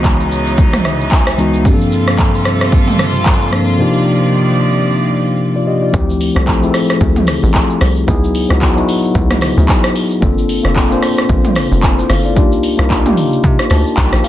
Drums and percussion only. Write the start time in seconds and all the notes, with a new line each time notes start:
0.04 kick, clap, shaker
0.20 shaker
0.31 shaker
0.47 shaker
0.58 kick, shaker
0.73 cross-stick, mid tom, shaker
0.84 cross-stick, shaker
1.01 shaker
1.12 kick, clap, shaker
1.27 cross-stick, shaker
1.38 shaker
1.53 shaker
1.65 kick, shaker
1.81 shaker
1.92 shaker
2.08 cross-stick
2.19 kick, clap, shaker
2.35 shaker
2.45 cross-stick, shaker
2.61 cross-stick, shaker
2.72 kick, shaker
2.88 mid tom, shaker
2.98 cross-stick, shaker
3.15 shaker
3.26 kick, clap, shaker
3.42 shaker
3.53 cross-stick, shaker
3.68 shaker
5.94 kick, shaker
6.10 shaker
6.21 open hi-hat, shaker
6.36 cross-stick
6.47 kick, clap, shaker
6.63 shaker
6.74 cross-stick, open hi-hat, shaker
6.90 cross-stick, shaker
7.01 kick, shaker
7.16 mid tom, shaker
7.27 cross-stick, open hi-hat, shaker
7.44 shaker
7.54 kick, clap, shaker
7.70 shaker
7.81 cross-stick, open hi-hat, shaker
7.96 shaker
8.08 kick, shaker
8.24 shaker
8.35 open hi-hat, shaker
8.50 cross-stick
8.62 kick, clap, shaker
8.77 shaker
8.89 open hi-hat, shaker
9.04 shaker
9.15 kick, shaker
9.30 cross-stick, mid tom, shaker
9.41 cross-stick, open hi-hat, shaker
9.58 shaker
9.69 kick, clap, shaker
9.84 cross-stick, shaker
9.96 open hi-hat, shaker
10.11 shaker
10.22 kick, shaker
10.38 shaker
10.49 open hi-hat, shaker
10.65 cross-stick
10.76 kick, clap, shaker
10.92 shaker
11.02 cross-stick, open hi-hat, shaker
11.18 cross-stick, shaker
11.29 kick, shaker
11.45 mid tom, shaker
11.55 cross-stick, open hi-hat, shaker
11.72 shaker
11.83 kick, clap, shaker
11.99 shaker
12.10 cross-stick, open hi-hat, shaker
12.25 shaker
12.36 kick, shaker
12.52 shaker
12.63 open hi-hat, shaker
12.79 cross-stick, shaker
12.90 kick, clap, shaker
13.06 mid tom, shaker
13.17 open hi-hat, shaker
13.33 shaker
13.44 kick, shaker
13.59 cross-stick, shaker
13.70 cross-stick, open hi-hat, shaker
13.87 shaker
13.97 kick, clap, shaker
14.13 cross-stick, shaker
14.24 open hi-hat, shaker